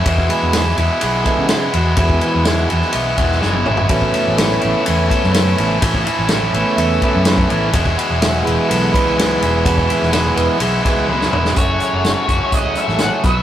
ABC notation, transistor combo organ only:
X:1
M:4/4
L:1/8
Q:1/4=125
K:Emix
V:1 name="Transistor combo organ"
F2 G z G A G F- | F E2 z4 z | F2 E2 z4 | z4 e2 E2 |
z2 F G A B3- | B2 z B G2 F z | [Ee]8 |]
V:2 name="Transistor combo organ" clef=bass
z [E,G,B,] z3 [E,G,B,] z2 | [E,G,B,]3 z2 [E,G,B,] z2 | [C,A,B,]8 | z3 [C,A,B,]4- [C,A,B,] |
z3 [E,G,B,]4- [E,G,B,]- | [E,G,B,] [E,G,B,]3 z [E,G,B,] z2 | [F,CA]6- [F,CA] [F,B,B] |]